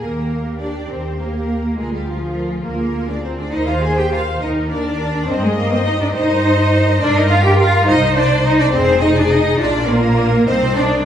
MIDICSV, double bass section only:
0, 0, Header, 1, 2, 480
1, 0, Start_track
1, 0, Key_signature, -3, "major"
1, 0, Tempo, 587084
1, 11, Time_signature, 6, 3, 24, 8
1, 3370, Tempo, 576369
1, 7690, Tempo, 588813
1, 9109, End_track
2, 0, Start_track
2, 0, Title_t, "Double bass section"
2, 0, Program_c, 0, 48
2, 5, Note_on_c, 0, 39, 46
2, 647, Note_off_c, 0, 39, 0
2, 731, Note_on_c, 0, 39, 44
2, 1371, Note_off_c, 0, 39, 0
2, 1454, Note_on_c, 0, 38, 55
2, 2087, Note_off_c, 0, 38, 0
2, 2172, Note_on_c, 0, 38, 53
2, 2806, Note_off_c, 0, 38, 0
2, 2892, Note_on_c, 0, 39, 67
2, 3526, Note_off_c, 0, 39, 0
2, 3616, Note_on_c, 0, 39, 66
2, 4256, Note_off_c, 0, 39, 0
2, 4337, Note_on_c, 0, 43, 77
2, 4971, Note_off_c, 0, 43, 0
2, 5055, Note_on_c, 0, 43, 68
2, 5690, Note_off_c, 0, 43, 0
2, 5773, Note_on_c, 0, 43, 87
2, 6408, Note_off_c, 0, 43, 0
2, 6491, Note_on_c, 0, 36, 84
2, 7125, Note_off_c, 0, 36, 0
2, 7211, Note_on_c, 0, 29, 91
2, 7843, Note_off_c, 0, 29, 0
2, 7927, Note_on_c, 0, 34, 91
2, 8559, Note_off_c, 0, 34, 0
2, 8644, Note_on_c, 0, 36, 89
2, 9109, Note_off_c, 0, 36, 0
2, 9109, End_track
0, 0, End_of_file